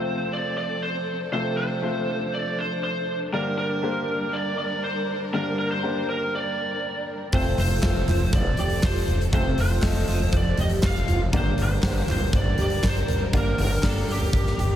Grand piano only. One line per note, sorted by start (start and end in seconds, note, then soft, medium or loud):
0.00 1.32 C3 medium
0.00 1.32 A3 medium
0.00 1.32 C4 medium
0.00 1.33 F4 medium
0.00 1.33 A4 medium
0.00 1.33 C5 medium
1.32 2.03 C3 medium
1.32 1.69 A3 medium
1.32 1.69 C4 medium
1.32 1.70 F4 medium
1.32 1.70 A4 medium
1.32 1.70 C5 medium
1.82 2.56 A3 medium
1.82 2.57 C4 medium
1.82 2.57 F4 medium
1.82 2.57 A4 medium
1.82 2.57 C5 medium
3.32 4.04 G2 medium
3.32 4.04 D3 medium
3.32 3.70 A#3 medium
3.32 3.70 D4 medium
3.32 3.70 G4 medium
3.32 3.70 A#4 medium
3.32 3.70 D5 medium
3.82 4.57 A#3 medium
3.82 4.57 D4 medium
3.82 4.57 G4 medium
3.82 4.57 A#4 medium
3.82 4.57 C5 medium
5.33 6.04 G2 medium
5.33 6.04 D3 medium
5.33 5.70 A#3 medium
5.33 5.70 D4 medium
5.33 5.70 G4 medium
5.33 5.70 A#4 medium
5.33 5.71 D5 medium
5.83 6.57 A#3 medium
5.83 6.57 D4 medium
5.83 6.57 G4 medium
5.83 6.57 A#4 medium
5.83 6.58 C5 medium
7.33 8.04 C3 medium
7.33 7.70 A3 medium
7.33 7.70 C4 medium
7.33 7.70 F4 medium
7.33 7.70 A4 medium
7.33 7.71 C5 medium
7.83 8.57 A3 medium
7.83 8.57 C4 medium
7.83 8.57 F4 medium
7.83 8.57 A4 medium
7.83 8.58 C5 medium
9.32 10.04 C3 medium
9.32 9.70 A3 medium
9.32 9.70 C4 medium
9.32 9.70 F4 medium
9.32 9.70 A4 medium
9.32 9.70 C5 medium
9.82 10.56 A3 medium
9.82 10.57 C4 medium
9.82 10.57 F4 medium
9.82 10.57 A4 medium
9.82 10.57 D#5 medium
11.32 12.04 G2 medium
11.32 12.04 D3 medium
11.32 11.70 A#3 medium
11.32 11.70 D4 medium
11.32 11.70 G4 medium
11.32 11.70 A#4 medium
11.32 11.70 D5 medium
11.83 12.57 A#3 medium
11.83 12.57 D4 medium
11.83 12.57 G4 medium
11.83 12.57 A#4 medium
11.83 12.57 C5 medium
13.33 14.04 G2 medium
13.33 14.04 D3 medium
13.33 13.70 A#3 medium
13.33 13.70 D4 medium
13.33 13.70 G4 medium
13.33 13.70 A#4 medium
13.33 13.70 D5 loud
13.83 14.57 A#3 medium
13.83 14.57 D4 medium
13.83 14.57 G4 medium
13.83 14.57 A#4 medium
13.83 14.57 D5 medium